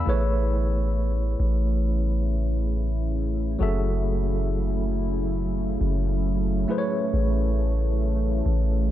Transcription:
0, 0, Header, 1, 4, 480
1, 0, Start_track
1, 0, Tempo, 882353
1, 40, Time_signature, 4, 2, 24, 8
1, 4849, End_track
2, 0, Start_track
2, 0, Title_t, "Tine electric piano"
2, 0, Program_c, 0, 4
2, 0, Control_c, 0, 64, 127
2, 0, Note_on_c, 0, 83, 50
2, 0, Note_on_c, 0, 88, 61
2, 31, Note_on_c, 0, 57, 73
2, 37, Note_on_c, 0, 64, 67
2, 40, Note_on_c, 0, 68, 64
2, 46, Note_on_c, 0, 71, 66
2, 48, Control_c, 0, 64, 0
2, 52, Note_on_c, 0, 73, 77
2, 133, Control_c, 0, 64, 127
2, 160, Note_off_c, 0, 88, 0
2, 161, Note_off_c, 0, 83, 0
2, 1934, Note_off_c, 0, 57, 0
2, 1937, Note_off_c, 0, 64, 0
2, 1938, Note_off_c, 0, 68, 0
2, 1941, Note_off_c, 0, 71, 0
2, 1944, Note_off_c, 0, 73, 0
2, 1952, Note_on_c, 0, 54, 71
2, 1958, Note_on_c, 0, 66, 67
2, 1962, Note_on_c, 0, 68, 66
2, 1967, Control_c, 0, 64, 0
2, 1967, Note_on_c, 0, 69, 69
2, 1973, Note_on_c, 0, 76, 80
2, 2067, Control_c, 0, 64, 127
2, 3614, Note_off_c, 0, 54, 0
2, 3617, Note_off_c, 0, 66, 0
2, 3619, Note_off_c, 0, 68, 0
2, 3622, Note_off_c, 0, 69, 0
2, 3625, Note_off_c, 0, 76, 0
2, 3633, Note_on_c, 0, 57, 72
2, 3639, Note_on_c, 0, 64, 69
2, 3644, Note_on_c, 0, 68, 65
2, 3647, Control_c, 0, 64, 0
2, 3648, Note_on_c, 0, 71, 68
2, 3654, Note_on_c, 0, 72, 66
2, 3685, Note_off_c, 0, 72, 0
2, 3689, Note_on_c, 0, 73, 82
2, 3741, Control_c, 0, 64, 127
2, 4849, Note_off_c, 0, 57, 0
2, 4849, Note_off_c, 0, 64, 0
2, 4849, Note_off_c, 0, 68, 0
2, 4849, Note_off_c, 0, 71, 0
2, 4849, Note_off_c, 0, 73, 0
2, 4849, End_track
3, 0, Start_track
3, 0, Title_t, "Ambient pad"
3, 0, Program_c, 1, 92
3, 37, Note_on_c, 1, 57, 72
3, 38, Note_on_c, 1, 49, 76
3, 39, Note_on_c, 1, 52, 66
3, 39, Note_on_c, 1, 64, 83
3, 1939, Note_off_c, 1, 57, 0
3, 1940, Note_off_c, 1, 52, 0
3, 1961, Note_on_c, 1, 54, 67
3, 1962, Note_on_c, 1, 57, 68
3, 3623, Note_off_c, 1, 54, 0
3, 3639, Note_on_c, 1, 52, 75
3, 4578, Note_off_c, 1, 64, 0
3, 4597, Note_on_c, 1, 75, 79
3, 4849, Note_off_c, 1, 49, 0
3, 4849, Note_off_c, 1, 52, 0
3, 4849, Note_off_c, 1, 57, 0
3, 4849, Note_off_c, 1, 75, 0
3, 4849, End_track
4, 0, Start_track
4, 0, Title_t, "808-style bass"
4, 0, Program_c, 2, 38
4, 39, Note_on_c, 2, 33, 106
4, 738, Note_off_c, 2, 33, 0
4, 760, Note_on_c, 2, 33, 102
4, 1938, Note_off_c, 2, 33, 0
4, 1963, Note_on_c, 2, 30, 110
4, 3139, Note_off_c, 2, 30, 0
4, 3160, Note_on_c, 2, 30, 101
4, 3621, Note_off_c, 2, 30, 0
4, 3882, Note_on_c, 2, 33, 112
4, 4579, Note_off_c, 2, 33, 0
4, 4602, Note_on_c, 2, 33, 102
4, 4849, Note_off_c, 2, 33, 0
4, 4849, End_track
0, 0, End_of_file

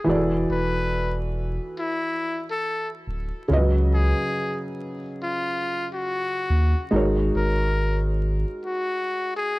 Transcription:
0, 0, Header, 1, 4, 480
1, 0, Start_track
1, 0, Tempo, 857143
1, 35, Time_signature, 4, 2, 24, 8
1, 5370, End_track
2, 0, Start_track
2, 0, Title_t, "Muted trumpet"
2, 0, Program_c, 0, 59
2, 288, Note_on_c, 0, 71, 77
2, 655, Note_off_c, 0, 71, 0
2, 1003, Note_on_c, 0, 64, 70
2, 1372, Note_off_c, 0, 64, 0
2, 1404, Note_on_c, 0, 69, 82
2, 1615, Note_off_c, 0, 69, 0
2, 2207, Note_on_c, 0, 68, 81
2, 2574, Note_off_c, 0, 68, 0
2, 2929, Note_on_c, 0, 65, 77
2, 3295, Note_off_c, 0, 65, 0
2, 3326, Note_on_c, 0, 66, 72
2, 3860, Note_off_c, 0, 66, 0
2, 4124, Note_on_c, 0, 70, 77
2, 4492, Note_off_c, 0, 70, 0
2, 4845, Note_on_c, 0, 66, 67
2, 5243, Note_on_c, 0, 68, 84
2, 5251, Note_off_c, 0, 66, 0
2, 5370, Note_off_c, 0, 68, 0
2, 5370, End_track
3, 0, Start_track
3, 0, Title_t, "Felt piano"
3, 0, Program_c, 1, 0
3, 0, Control_c, 1, 64, 127
3, 24, Note_on_c, 1, 52, 82
3, 32, Note_on_c, 1, 64, 68
3, 39, Note_on_c, 1, 66, 67
3, 42, Control_c, 1, 64, 0
3, 46, Note_on_c, 1, 68, 55
3, 54, Note_on_c, 1, 74, 83
3, 82, Note_on_c, 1, 69, 67
3, 88, Note_off_c, 1, 68, 0
3, 154, Control_c, 1, 64, 127
3, 1927, Note_off_c, 1, 52, 0
3, 1931, Note_off_c, 1, 64, 0
3, 1935, Note_off_c, 1, 66, 0
3, 1942, Note_off_c, 1, 74, 0
3, 1950, Note_on_c, 1, 49, 72
3, 1956, Note_off_c, 1, 69, 0
3, 1956, Note_on_c, 1, 61, 69
3, 1962, Control_c, 1, 64, 0
3, 1965, Note_on_c, 1, 65, 56
3, 1972, Note_on_c, 1, 71, 70
3, 1978, Note_on_c, 1, 75, 89
3, 2001, Note_on_c, 1, 54, 70
3, 2007, Note_off_c, 1, 65, 0
3, 2054, Control_c, 1, 64, 127
3, 3850, Note_off_c, 1, 49, 0
3, 3853, Note_off_c, 1, 61, 0
3, 3861, Note_off_c, 1, 71, 0
3, 3864, Note_off_c, 1, 75, 0
3, 3869, Note_on_c, 1, 56, 79
3, 3873, Note_on_c, 1, 63, 74
3, 3876, Note_off_c, 1, 54, 0
3, 3882, Control_c, 1, 64, 0
3, 3882, Note_on_c, 1, 66, 74
3, 3891, Note_on_c, 1, 70, 67
3, 3898, Note_on_c, 1, 73, 80
3, 3995, Control_c, 1, 64, 127
3, 5370, Note_off_c, 1, 56, 0
3, 5370, Note_off_c, 1, 63, 0
3, 5370, Note_off_c, 1, 66, 0
3, 5370, Note_off_c, 1, 70, 0
3, 5370, Note_off_c, 1, 73, 0
3, 5370, End_track
4, 0, Start_track
4, 0, Title_t, "Sub bass"
4, 0, Program_c, 2, 38
4, 39, Note_on_c, 2, 28, 101
4, 252, Note_off_c, 2, 28, 0
4, 279, Note_on_c, 2, 28, 90
4, 890, Note_off_c, 2, 28, 0
4, 1721, Note_on_c, 2, 26, 87
4, 1858, Note_off_c, 2, 26, 0
4, 1960, Note_on_c, 2, 37, 104
4, 2312, Note_off_c, 2, 37, 0
4, 3639, Note_on_c, 2, 39, 84
4, 3777, Note_off_c, 2, 39, 0
4, 3877, Note_on_c, 2, 32, 101
4, 4091, Note_off_c, 2, 32, 0
4, 4116, Note_on_c, 2, 32, 94
4, 4729, Note_off_c, 2, 32, 0
4, 5370, End_track
0, 0, End_of_file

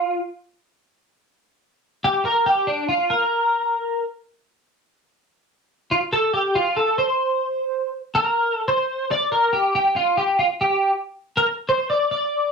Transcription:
0, 0, Header, 1, 2, 480
1, 0, Start_track
1, 0, Key_signature, -2, "major"
1, 0, Tempo, 642398
1, 87, Time_signature, 4, 2, 24, 8
1, 9354, End_track
2, 0, Start_track
2, 0, Title_t, "Clean electric guitar"
2, 0, Program_c, 0, 27
2, 0, Note_on_c, 0, 65, 85
2, 132, Note_off_c, 0, 65, 0
2, 1527, Note_on_c, 0, 67, 85
2, 1677, Note_off_c, 0, 67, 0
2, 1681, Note_on_c, 0, 70, 101
2, 1834, Note_off_c, 0, 70, 0
2, 1839, Note_on_c, 0, 67, 100
2, 1993, Note_off_c, 0, 67, 0
2, 1995, Note_on_c, 0, 62, 84
2, 2152, Note_off_c, 0, 62, 0
2, 2155, Note_on_c, 0, 65, 86
2, 2316, Note_on_c, 0, 70, 85
2, 2328, Note_off_c, 0, 65, 0
2, 3013, Note_off_c, 0, 70, 0
2, 4417, Note_on_c, 0, 65, 68
2, 4459, Note_off_c, 0, 65, 0
2, 4577, Note_on_c, 0, 69, 86
2, 4730, Note_off_c, 0, 69, 0
2, 4733, Note_on_c, 0, 67, 76
2, 4896, Note_off_c, 0, 67, 0
2, 4897, Note_on_c, 0, 65, 78
2, 5055, Note_on_c, 0, 69, 78
2, 5057, Note_off_c, 0, 65, 0
2, 5214, Note_off_c, 0, 69, 0
2, 5217, Note_on_c, 0, 72, 93
2, 5902, Note_off_c, 0, 72, 0
2, 6089, Note_on_c, 0, 70, 95
2, 6388, Note_off_c, 0, 70, 0
2, 6388, Note_on_c, 0, 69, 95
2, 6484, Note_off_c, 0, 69, 0
2, 6487, Note_on_c, 0, 72, 100
2, 6805, Note_off_c, 0, 72, 0
2, 6808, Note_on_c, 0, 74, 106
2, 6960, Note_off_c, 0, 74, 0
2, 6963, Note_on_c, 0, 70, 89
2, 7119, Note_on_c, 0, 67, 86
2, 7129, Note_off_c, 0, 70, 0
2, 7271, Note_off_c, 0, 67, 0
2, 7285, Note_on_c, 0, 67, 86
2, 7440, Note_off_c, 0, 67, 0
2, 7443, Note_on_c, 0, 65, 88
2, 7598, Note_off_c, 0, 65, 0
2, 7601, Note_on_c, 0, 67, 94
2, 7759, Note_off_c, 0, 67, 0
2, 7762, Note_on_c, 0, 65, 84
2, 7806, Note_off_c, 0, 65, 0
2, 7927, Note_on_c, 0, 67, 79
2, 8149, Note_off_c, 0, 67, 0
2, 8497, Note_on_c, 0, 70, 80
2, 8560, Note_off_c, 0, 70, 0
2, 8734, Note_on_c, 0, 72, 86
2, 8877, Note_off_c, 0, 72, 0
2, 8890, Note_on_c, 0, 74, 92
2, 9042, Note_off_c, 0, 74, 0
2, 9051, Note_on_c, 0, 74, 90
2, 9354, Note_off_c, 0, 74, 0
2, 9354, End_track
0, 0, End_of_file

